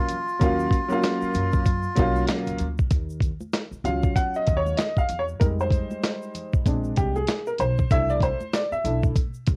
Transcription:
0.00 0.11 F#3 medium
0.00 0.12 A#3 medium
0.00 0.13 C#4 medium
0.00 0.13 F4 medium
0.00 2.25 F4 medium
0.09 closed hi-hat medium
0.09 low conga medium
0.09 shaker soft
0.28 shaker soft
0.39 0.65 D#2 loud
0.39 0.73 F#3 medium
0.39 0.73 A#3 medium
0.39 0.74 C#4 medium
0.39 kick loud
0.39 closed hi-hat loud
0.39 shaker medium
0.43 0.75 F4 medium
0.60 shaker medium
0.71 kick medium
0.71 closed hi-hat medium
0.71 high conga soft
0.71 shaker soft
0.89 1.63 F#3 medium
0.89 1.64 A#3 medium
0.89 1.64 C#4 medium
0.89 1.65 F4 loud
0.89 high conga medium
0.89 shaker soft
1.03 snare loud
1.03 closed hi-hat medium
1.03 shaker medium
1.22 muted upright bass stroke soft
1.22 shaker soft
1.34 1.84 F#2 loud
1.34 closed hi-hat medium
1.34 low conga medium
1.34 shaker soft
1.52 kick medium
1.52 shaker soft
1.65 kick medium
1.65 closed hi-hat medium
1.65 shaker medium
1.83 shaker soft
1.95 2.22 B1 medium
1.95 2.61 F#3 medium
1.95 2.62 A#3 medium
1.95 2.63 C#4 medium
1.95 2.63 F4 loud
1.95 kick loud
1.95 closed hi-hat medium
1.95 low conga medium
1.95 shaker medium
2.16 high conga medium
2.16 shaker soft
2.27 snare loud
2.27 closed hi-hat medium
2.27 shaker medium
2.47 2.57 C#2 medium
2.47 closed hi-hat soft
2.47 shaker soft
2.58 2.84 D2 medium
2.58 closed hi-hat medium
2.58 low conga medium
2.58 shaker soft
2.78 kick medium
2.78 shaker soft
2.91 3.30 D#2 medium
2.91 kick loud
2.91 closed hi-hat loud
2.91 shaker medium
3.10 shaker soft
3.21 kick medium
3.21 closed hi-hat medium
3.21 shaker soft
3.41 high conga medium
3.41 shaker soft
3.53 snare loud
3.53 closed hi-hat medium
3.53 shaker medium
3.71 muted upright bass stroke soft
3.71 shaker soft
3.84 4.09 C#2 medium
3.84 4.74 F#3 medium
3.84 4.74 C#4 soft
3.84 4.75 F4 medium
3.84 4.17 F5 medium
3.84 closed hi-hat medium
3.84 low conga medium
3.84 shaker soft
4.03 kick medium
4.03 shaker soft
4.16 4.35 F#5 medium
4.16 kick medium
4.16 closed hi-hat medium
4.16 high conga soft
4.16 shaker medium
4.34 4.58 D#5 medium
4.34 shaker soft
4.47 4.72 D#2 medium
4.47 kick medium
4.47 closed hi-hat medium
4.47 low conga medium
4.47 shaker soft
4.57 4.77 C#5 loud
4.66 high conga medium
4.66 shaker soft
4.77 4.99 D#5 medium
4.77 snare loud
4.77 closed hi-hat medium
4.77 shaker medium
4.97 5.18 F5 medium
4.97 kick medium
4.97 shaker soft
5.09 5.34 E2 medium
5.09 closed hi-hat medium
5.09 low conga medium
5.09 shaker soft
5.19 5.24 C#5 medium
5.28 shaker soft
5.40 5.80 F2 loud
5.40 6.62 G3 medium
5.40 6.62 G#3 soft
5.40 6.62 D#4 medium
5.40 5.45 A#4 medium
5.40 kick loud
5.40 closed hi-hat loud
5.40 shaker medium
5.60 6.51 C5 medium
5.60 shaker soft
5.71 kick medium
5.71 closed hi-hat medium
5.71 shaker soft
5.91 high conga medium
5.91 shaker soft
6.03 snare loud
6.03 closed hi-hat medium
6.03 shaker medium
6.22 shaker soft
6.35 closed hi-hat medium
6.35 low conga medium
6.35 shaker soft
6.53 kick medium
6.53 shaker soft
6.65 6.90 A#1 medium
6.65 7.09 G#3 medium
6.65 7.10 C4 soft
6.65 7.10 D4 medium
6.65 kick medium
6.65 closed hi-hat medium
6.65 high conga soft
6.65 shaker medium
6.84 shaker soft
6.96 7.22 C2 medium
6.96 7.14 G4 medium
6.96 kick medium
6.96 closed hi-hat medium
6.96 low conga medium
6.96 shaker medium
7.16 7.45 G#4 medium
7.16 high conga medium
7.16 shaker soft
7.27 snare loud
7.27 closed hi-hat medium
7.27 shaker medium
7.47 7.52 A#4 medium
7.47 shaker soft
7.58 7.84 B1 medium
7.58 7.92 C5 medium
7.58 closed hi-hat medium
7.58 low conga medium
7.58 shaker soft
7.78 kick medium
7.78 shaker soft
7.91 8.30 C2 medium
7.91 8.35 A3 medium
7.91 8.35 D4 soft
7.91 8.35 E4 medium
7.91 8.10 E5 loud
7.91 kick loud
7.91 closed hi-hat medium
7.91 shaker medium
8.10 8.22 D5 medium
8.10 shaker soft
8.21 8.55 C5 medium
8.21 kick medium
8.21 closed hi-hat medium
8.21 shaker soft
8.40 high conga medium
8.40 shaker soft
8.53 8.71 D5 medium
8.53 snare loud
8.53 closed hi-hat medium
8.53 shaker medium
8.72 9.01 E5 medium
8.72 muted upright bass stroke soft
8.72 shaker soft
8.84 9.09 B1 medium
8.84 9.13 A3 soft
8.84 9.13 D4 soft
8.84 9.13 E4 medium
8.84 closed hi-hat medium
8.84 low conga medium
8.84 shaker soft
9.03 kick loud
9.03 shaker soft
9.16 kick medium
9.16 closed hi-hat loud
9.16 high conga soft
9.16 shaker medium
9.34 shaker soft
9.46 9.56 C2 medium
9.46 kick loud
9.46 closed hi-hat medium
9.46 low conga medium
9.46 shaker soft

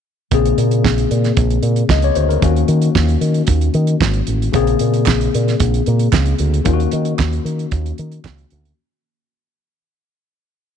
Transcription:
0.31 0.52 A#1 loud
0.31 2.13 C#3 medium
0.31 2.13 A#3 medium
0.31 2.14 C4 medium
0.31 2.14 G#4 medium
0.31 kick medium
0.31 closed hi-hat medium
0.45 closed hi-hat soft
0.58 0.86 A#2 loud
0.58 closed hi-hat medium
0.71 closed hi-hat soft
0.85 1.04 A#1 loud
0.85 kick loud
0.85 snare loud
0.98 closed hi-hat soft
1.11 1.31 A#2 loud
1.11 closed hi-hat medium
1.24 snare soft
1.24 closed hi-hat soft
1.37 1.57 A#1 loud
1.37 kick loud
1.37 closed hi-hat medium
1.50 closed hi-hat soft
1.63 1.83 A#2 loud
1.63 closed hi-hat medium
1.76 closed hi-hat soft
1.89 2.09 C#2 loud
1.89 2.03 D#5 medium
1.89 kick loud
1.89 snare loud
2.02 2.16 C#5 medium
2.02 closed hi-hat soft
2.15 2.36 D2 medium
2.15 2.29 C5 medium
2.15 closed hi-hat medium
2.29 2.54 A#4 medium
2.29 closed hi-hat soft
2.41 2.62 D#2 loud
2.41 4.50 D#3 medium
2.41 4.50 A#3 medium
2.41 4.51 C#4 medium
2.41 4.51 F#4 medium
2.41 kick loud
2.41 closed hi-hat medium
2.56 closed hi-hat soft
2.68 2.88 D#3 loud
2.68 closed hi-hat medium
2.82 closed hi-hat medium
2.95 3.15 D#2 medium
2.95 kick loud
2.95 snare loud
3.08 closed hi-hat soft
3.21 3.41 D#3 medium
3.21 closed hi-hat medium
3.34 closed hi-hat soft
3.47 3.68 D#2 medium
3.47 kick loud
3.47 closed hi-hat medium
3.61 closed hi-hat soft
3.74 3.94 D#3 loud
3.74 closed hi-hat medium
3.87 closed hi-hat medium
4.00 4.21 G#1 medium
4.00 kick loud
4.00 snare loud
4.13 closed hi-hat soft
4.27 4.47 A1 medium
4.27 closed hi-hat medium
4.42 closed hi-hat soft
4.52 4.74 A#1 loud
4.52 6.61 C#3 medium
4.52 6.62 A#3 medium
4.52 6.62 C4 medium
4.52 6.62 G#4 medium
4.52 kick loud
4.52 closed hi-hat medium
4.67 closed hi-hat soft
4.79 5.09 A#2 medium
4.79 closed hi-hat medium
4.94 closed hi-hat medium
5.06 5.27 A#1 loud
5.06 kick loud
5.06 snare loud
5.06 clap medium
5.21 closed hi-hat soft
5.34 5.54 A#2 medium
5.34 closed hi-hat medium
5.48 snare soft
5.48 closed hi-hat soft
5.60 5.80 A#1 loud
5.60 kick loud
5.60 closed hi-hat medium
5.74 closed hi-hat soft
5.86 6.07 A#2 loud
5.86 closed hi-hat medium
5.99 closed hi-hat medium
6.13 6.33 C#2 medium
6.13 kick loud
6.13 snare loud
6.13 clap medium
6.26 closed hi-hat soft
6.39 6.59 D2 medium
6.39 closed hi-hat medium
6.54 closed hi-hat soft
6.65 6.86 D#2 loud
6.65 8.73 D#3 medium
6.65 8.73 A#3 medium
6.65 8.74 C#4 medium
6.65 6.73 F4 medium
6.65 kick loud
6.65 closed hi-hat medium
6.73 8.77 F#4 medium
6.80 closed hi-hat soft
6.92 7.12 D#3 loud
6.92 closed hi-hat medium
7.05 closed hi-hat medium
7.19 7.38 D#2 medium
7.19 kick loud
7.19 snare loud
7.19 clap medium
7.33 closed hi-hat soft
7.45 7.65 D#3 medium
7.45 closed hi-hat medium
7.59 closed hi-hat soft
7.71 7.91 D#2 loud
7.71 kick loud
7.71 closed hi-hat medium
7.86 closed hi-hat soft
7.98 8.18 D#3 loud
7.98 closed hi-hat medium
8.12 closed hi-hat medium
8.24 8.44 C#2 medium
8.24 kick loud
8.24 snare loud
8.24 clap medium
8.38 closed hi-hat soft
8.50 8.71 D2 loud
8.50 closed hi-hat medium
8.65 closed hi-hat medium

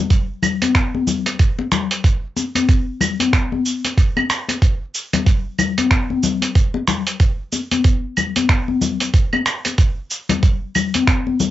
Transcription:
0.10 kick loud
0.10 closed hi-hat soft
0.10 shaker soft
0.43 low conga medium
0.43 claves medium
0.43 shaker medium
0.62 closed hi-hat medium
0.62 high conga medium
0.62 shaker soft
0.75 finger snap medium
0.75 kick medium
0.75 closed hi-hat soft
0.75 shaker soft
0.95 high conga medium
1.07 low conga medium
1.07 shaker medium
1.26 closed hi-hat medium
1.26 muted conga soft
1.26 shaker soft
1.39 kick loud
1.39 closed hi-hat soft
1.39 shaker soft
1.59 muted conga medium
1.72 finger snap medium
1.72 low conga medium
1.72 shaker medium
1.91 closed hi-hat medium
1.91 shaker soft
2.04 kick loud
2.04 closed hi-hat soft
2.04 shaker soft
2.37 muted conga soft
2.37 shaker medium
2.55 closed hi-hat medium
2.55 high conga medium
2.55 shaker soft
2.69 kick loud
2.69 closed hi-hat soft
2.69 shaker soft
3.01 low conga medium
3.01 claves medium
3.01 shaker medium
3.20 closed hi-hat medium
3.20 high conga medium
3.20 shaker soft
3.33 finger snap medium
3.33 kick loud
3.33 closed hi-hat soft
3.33 shaker soft
3.52 high conga medium
3.66 shaker medium
3.85 closed hi-hat soft
3.85 muted conga soft
3.85 shaker soft
3.98 kick loud
3.98 closed hi-hat soft
3.98 shaker soft
4.17 muted conga medium
4.17 claves medium
4.30 finger snap medium
4.30 claves medium
4.30 shaker medium
4.49 closed hi-hat medium
4.49 muted conga soft
4.49 shaker soft
4.62 kick loud
4.62 closed hi-hat soft
4.62 shaker soft
4.95 shaker medium
5.13 closed hi-hat medium
5.13 muted conga soft
5.13 low conga medium
5.13 shaker soft
5.26 kick loud
5.26 closed hi-hat soft
5.26 shaker soft
5.59 low conga medium
5.59 claves medium
5.59 shaker medium
5.78 closed hi-hat medium
5.78 high conga medium
5.78 shaker soft
5.91 finger snap medium
5.91 kick loud
5.91 closed hi-hat soft
5.91 shaker soft
6.10 high conga medium
6.23 low conga medium
6.23 shaker medium
6.42 closed hi-hat medium
6.42 muted conga soft
6.42 shaker soft
6.55 kick loud
6.55 closed hi-hat soft
6.55 shaker soft
6.74 muted conga medium
6.87 finger snap medium
6.87 low conga medium
6.87 shaker medium
7.07 closed hi-hat soft
7.07 shaker soft
7.20 kick loud
7.20 closed hi-hat soft
7.20 shaker soft
7.52 muted conga soft
7.52 shaker medium
7.71 closed hi-hat soft
7.71 high conga medium
7.71 shaker soft
7.84 kick loud
7.84 closed hi-hat soft
7.84 shaker soft
8.17 low conga medium
8.17 claves medium
8.17 shaker medium
8.36 closed hi-hat medium
8.36 high conga medium
8.36 shaker soft
8.49 finger snap medium
8.49 kick loud
8.49 closed hi-hat soft
8.49 shaker soft
8.68 high conga medium
8.81 low conga medium
8.81 shaker medium
9.00 closed hi-hat soft
9.00 muted conga soft
9.00 shaker soft
9.14 kick loud
9.14 closed hi-hat soft
9.14 shaker soft
9.33 muted conga medium
9.33 claves medium
9.46 finger snap medium
9.46 claves medium
9.46 shaker medium
9.65 closed hi-hat soft
9.65 muted conga soft
9.65 shaker soft
9.78 kick loud
9.78 closed hi-hat soft
9.78 shaker soft
10.11 shaker medium
10.29 closed hi-hat soft
10.29 muted conga soft
10.29 low conga medium
10.29 shaker soft
10.43 kick loud
10.43 closed hi-hat soft
10.43 shaker soft
10.75 low conga medium
10.75 claves medium
10.75 shaker medium
10.94 closed hi-hat soft
10.94 high conga medium
10.94 shaker soft
11.07 finger snap medium
11.07 kick loud
11.07 closed hi-hat soft
11.07 shaker soft
11.27 high conga medium
11.40 low conga medium
11.40 shaker medium

